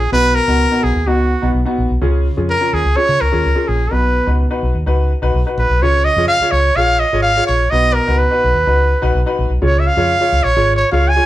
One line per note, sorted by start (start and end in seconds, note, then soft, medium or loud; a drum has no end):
0.00 0.12 G#4 medium
0.12 0.39 B1 loud
0.12 0.80 B2 medium
0.12 0.36 B3 medium
0.12 0.36 D#4 medium
0.12 0.36 F#4 medium
0.12 0.36 B4 loud
0.35 0.85 A#4 loud
0.48 0.65 C#2 medium
0.48 0.63 B3 medium
0.48 0.63 D#4 medium
0.48 0.64 F#4 medium
0.71 0.95 B3 medium
0.71 0.95 D#4 medium
0.71 0.95 F#4 medium
0.83 0.92 B1 medium
0.83 1.09 G#4 medium
0.96 1.07 D#2 medium
1.07 1.33 C#2 medium
1.07 1.31 B3 medium
1.07 1.31 D#4 medium
1.07 1.55 F#4 medium
1.07 1.31 F#4 medium
1.42 1.52 B1 medium
1.42 1.58 B3 medium
1.42 1.58 D#4 medium
1.42 1.58 F#4 medium
1.54 1.63 B1 medium
1.65 1.90 B3 medium
1.65 1.90 D#4 medium
1.65 1.90 F#4 medium
1.78 1.87 A#1 medium
1.90 1.99 B1 medium
2.02 2.28 C#2 loud
2.02 2.69 C#3 medium
2.02 2.25 C#4 medium
2.02 2.26 F4 medium
2.02 2.26 G#4 medium
2.37 2.55 F2 medium
2.37 2.53 C#4 medium
2.37 2.53 F4 medium
2.37 2.53 G#4 medium
2.50 2.75 A#4 loud
2.61 2.85 C#4 medium
2.61 2.85 F4 medium
2.61 2.85 A#4 medium
2.73 2.82 D#2 medium
2.73 2.98 G#4 medium
2.85 2.94 C#2 medium
2.96 3.20 C#4 medium
2.96 3.21 F4 medium
2.96 3.21 G#4 medium
2.96 3.22 C#5 loud
3.09 3.18 C#3 medium
3.21 3.30 C#2 medium
3.21 3.69 A#4 medium
3.32 3.42 D#2 medium
3.32 3.48 C#4 medium
3.32 3.48 F4 medium
3.32 3.48 G#4 medium
3.45 3.54 C#2 loud
3.55 3.79 C#4 medium
3.55 3.80 F4 medium
3.55 3.80 G#4 medium
3.68 3.86 A#1 loud
3.68 3.94 G#4 medium
3.91 4.19 B1 loud
3.91 4.59 B2 medium
3.91 4.15 D#4 medium
3.91 4.15 F#4 medium
3.91 4.16 B4 medium
3.91 4.40 B4 medium
4.27 4.45 C#2 loud
4.27 4.43 D#4 medium
4.27 4.43 F#4 medium
4.27 4.43 B4 medium
4.50 4.75 D#4 medium
4.50 4.75 F#4 medium
4.50 4.75 B4 medium
4.63 4.72 B1 medium
4.75 4.84 D#2 medium
4.86 5.13 C#2 medium
4.86 5.10 D#4 medium
4.86 5.11 F#4 medium
4.86 5.11 B4 medium
5.22 5.31 B1 medium
5.22 5.38 D#4 medium
5.22 5.38 F#4 medium
5.22 5.38 B4 loud
5.34 5.43 B1 medium
5.46 5.70 D#4 medium
5.46 5.70 F#4 medium
5.46 5.70 B4 medium
5.57 5.67 A#1 medium
5.57 5.84 B4 medium
5.69 5.82 B1 medium
5.82 6.08 C#2 loud
5.82 6.50 C#3 medium
5.82 6.06 F4 medium
5.82 6.06 G#4 medium
5.82 6.06 C#5 loud
5.82 6.06 C#5 medium
6.05 6.27 D#5 loud
6.16 6.26 F2 medium
6.16 6.34 F4 medium
6.16 6.34 G#4 medium
6.16 6.34 C#5 medium
6.28 6.53 F5 loud
6.40 6.65 F4 medium
6.40 6.65 G#4 medium
6.40 6.66 C#5 medium
6.40 muted fingered electric bass stroke soft
6.51 6.70 C#2 medium
6.51 6.77 C#5 medium
6.76 7.03 A#1 medium
6.76 7.01 F4 medium
6.76 7.01 G#4 medium
6.76 7.01 C#5 medium
6.76 7.01 F5 loud
7.00 7.22 D#5 medium
7.13 7.39 G#1 medium
7.13 7.29 F4 medium
7.13 7.29 G#4 medium
7.13 7.29 C#5 medium
7.22 7.45 F5 loud
7.36 7.60 F4 medium
7.36 7.60 G#4 medium
7.36 7.60 C#5 medium
7.47 7.66 A#1 medium
7.47 7.72 C#5 medium
7.70 7.99 B1 loud
7.70 8.39 B2 medium
7.70 7.95 D#4 medium
7.70 7.96 F#4 medium
7.70 7.96 B4 medium
7.70 7.95 D#5 loud
7.94 8.20 A#4 medium
8.07 8.26 C#2 medium
8.07 8.23 D#4 medium
8.07 8.23 F#4 medium
8.07 8.23 B4 medium
8.18 9.38 B4 medium
8.31 8.55 D#4 medium
8.31 8.55 F#4 medium
8.31 8.55 B4 medium
8.44 8.53 B1 medium
8.55 8.64 D#2 medium
8.67 8.93 C#2 medium
8.67 8.90 D#4 medium
8.67 8.90 F#4 medium
8.67 8.91 B4 medium
9.02 9.12 B1 medium
9.02 9.18 D#4 medium
9.02 9.18 F#4 medium
9.02 9.18 B4 loud
9.15 9.23 B1 loud
9.26 9.50 D#4 medium
9.26 9.50 F#4 medium
9.26 9.50 B4 loud
9.39 9.47 A#1 medium
9.50 9.59 B1 medium
9.62 9.88 C#2 loud
9.62 10.29 C#3 medium
9.62 9.85 F4 medium
9.62 9.85 G#4 medium
9.62 9.86 C#5 medium
9.62 9.81 C#5 medium
9.79 9.88 E5 medium
9.87 10.45 F5 loud
9.97 10.15 F2 medium
9.97 10.13 F4 medium
9.97 10.13 G#4 medium
9.97 10.13 C#5 medium
10.21 10.45 F4 medium
10.21 10.45 G#4 medium
10.21 10.45 C#5 medium
10.32 10.41 C#2 loud
10.44 10.54 A#1 medium
10.44 10.74 C#5 medium
10.56 10.83 G#1 loud
10.56 10.80 F4 medium
10.56 10.80 G#4 medium
10.56 10.81 C#5 medium
10.76 10.89 C#5 medium
10.92 11.19 C#2 medium
10.92 11.08 F4 medium
10.92 11.08 G#4 medium
10.92 11.08 C#5 medium
10.92 11.10 F5 medium
11.08 11.26 G#5 loud
11.16 11.26 F4 medium
11.16 11.26 G#4 medium
11.16 11.26 C#5 medium